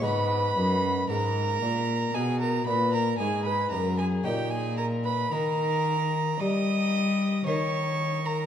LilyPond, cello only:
\new Staff \with { instrumentName = "Cello" } { \clef bass \time 4/4 \key aes \dorian \tempo 4 = 57 aes,8 ges,8 aes,8 bes,8 ces8 bes,8 aes,8 ges,8 | \key dis \phrygian ais,4 dis4 g4 dis4 | }